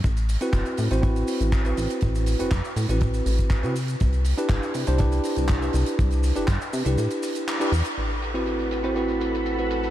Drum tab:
HH |xxoxxxoxxxoxxxox|xxoxxxoxxxoxxxox|xxoxxxoxxxoxxxox|xxoxxxoxxxoxxxox|
SH |xxxxxxxxxxxxxxxx|xxxxxxxxxxxxxxxx|xxxxxxxxxxxxxxxx|xxxxxxxxxxxxxxxx|
CP |----x-------x---|----x-------x---|----x-------x---|----x-------x---|
BD |o---o---o---o---|o---o---o--oo---|o---o---o---o---|o---o-----------|

HH |xxxxxxxxxxxxxxxx|
SH |xxxxxxxxxxxxxxxx|
CP |----------------|
BD |----------------|